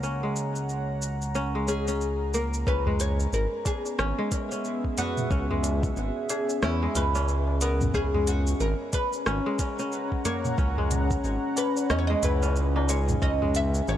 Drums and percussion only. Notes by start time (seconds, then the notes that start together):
0.03 shaker
0.36 shaker
0.56 shaker
0.69 shaker
1.02 shaker
1.22 shaker
1.35 shaker
1.68 shaker
1.88 shaker
2.01 shaker
2.34 shaker
2.54 shaker
2.67 kick, shaker
2.86 tabla ge
3.00 closed hi-hat, shaker
3.20 shaker
3.33 shaker
3.53 tabla tin
3.65 kick, closed hi-hat, tabla na, shaker
3.85 tabla tin, shaker
3.99 cross-stick, shaker
4.32 kick, closed hi-hat, tabla tin, shaker
4.52 shaker
4.65 shaker
4.84 kick
4.98 closed hi-hat, tabla na, tabla tin, tabla ge, shaker
5.17 mid tom, shaker
5.31 kick, shaker
5.51 tabla ge
5.63 closed hi-hat, tabla na, shaker
5.83 kick, tabla tin, shaker
5.97 shaker
6.16 tabla tin
6.30 closed hi-hat, tabla na, shaker
6.49 tabla tin, shaker
6.63 cross-stick, shaker
6.83 tabla na
6.95 closed hi-hat, tabla ge, shaker
7.15 tabla na, shaker
7.28 shaker
7.47 tabla na
7.61 closed hi-hat, tabla tin, shaker
7.81 mid tom, tabla ge, shaker
7.94 kick, shaker
8.14 tabla ge
8.27 closed hi-hat, shaker
8.47 shaker
8.60 shaker
8.80 tabla tin
8.93 kick, closed hi-hat, tabla na, shaker
9.13 tabla tin, shaker
9.26 cross-stick, shaker
9.59 kick, closed hi-hat, tabla tin, shaker
9.79 shaker
9.92 shaker
10.12 kick
10.25 closed hi-hat, tabla na, tabla tin, tabla ge, shaker
10.45 mid tom, shaker
10.58 kick, shaker
10.77 tabla ge
10.90 closed hi-hat, mid tom, tabla na, shaker
11.11 kick, shaker
11.24 shaker
11.44 tabla tin
11.56 closed hi-hat, tabla na, shaker
11.77 tabla tin, shaker
11.90 cross-stick, shaker
12.10 tabla na
12.23 closed hi-hat, tabla ge, shaker
12.43 tabla na, shaker
12.56 shaker
12.76 tabla na
12.89 closed hi-hat, tabla tin, shaker
13.09 mid tom, tabla ge, shaker
13.22 kick, shaker
13.42 tabla ge
13.55 closed hi-hat, shaker
13.75 shaker
13.88 shaker